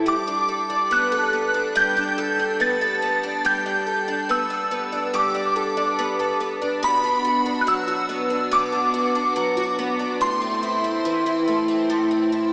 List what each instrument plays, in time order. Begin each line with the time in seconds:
Already playing: twelve-string acoustic guitar A2 C4 E4 A4
0.06 twelve-string acoustic guitar G3, synth bell D6
0.27 twelve-string acoustic guitar D4
0.49 twelve-string acoustic guitar A4
0.70 twelve-string acoustic guitar D4
0.91 twelve-string acoustic guitar B3, synth bell F#6
1.12 twelve-string acoustic guitar A4
1.33 twelve-string acoustic guitar B3
1.54 twelve-string acoustic guitar D4
1.75 twelve-string acoustic guitar G3, synth bell G6
1.97 twelve-string acoustic guitar D4
2.18 twelve-string acoustic guitar A4
2.39 twelve-string acoustic guitar D4
2.60 twelve-string acoustic guitar B3, synth bell A6
2.81 twelve-string acoustic guitar A4
3.02 twelve-string acoustic guitar B3
3.23 twelve-string acoustic guitar D4
3.45 twelve-string acoustic guitar G3, synth bell G6
3.66 twelve-string acoustic guitar D4
3.87 twelve-string acoustic guitar A4
4.08 twelve-string acoustic guitar D4
4.29 twelve-string acoustic guitar B3, synth bell E6
4.50 twelve-string acoustic guitar A4
4.71 twelve-string acoustic guitar B3
4.92 twelve-string acoustic guitar D4
5.14 twelve-string acoustic guitar G3, synth bell D6
5.35 twelve-string acoustic guitar D4
5.56 twelve-string acoustic guitar A4
5.77 twelve-string acoustic guitar D4
5.99 twelve-string acoustic guitar B3
6.19 twelve-string acoustic guitar A4
6.40 twelve-string acoustic guitar B3
6.62 twelve-string acoustic guitar D4
6.83 twelve-string acoustic guitar B2, synth bell B5
7.04 twelve-string acoustic guitar D4
7.25 twelve-string acoustic guitar F#4
7.46 twelve-string acoustic guitar D4
7.61 synth bell F#6
7.67 twelve-string acoustic guitar F#3, synth bell E6
7.88 twelve-string acoustic guitar F#4
8.09 twelve-string acoustic guitar B3
8.30 twelve-string acoustic guitar D4
8.51 twelve-string acoustic guitar B2, synth bell D6
8.72 twelve-string acoustic guitar D4
8.94 twelve-string acoustic guitar F#4
9.15 twelve-string acoustic guitar D4
9.36 twelve-string acoustic guitar F#3
9.57 twelve-string acoustic guitar F#4
9.78 twelve-string acoustic guitar B3
9.99 twelve-string acoustic guitar D4
10.21 twelve-string acoustic guitar A2, synth bell C6
10.42 twelve-string acoustic guitar C4
10.63 twelve-string acoustic guitar E4
10.84 twelve-string acoustic guitar C4
11.05 twelve-string acoustic guitar E3
11.26 twelve-string acoustic guitar E4
11.48 twelve-string acoustic guitar A3
11.68 twelve-string acoustic guitar C4
11.90 twelve-string acoustic guitar A2
12.11 twelve-string acoustic guitar C4
12.32 twelve-string acoustic guitar E4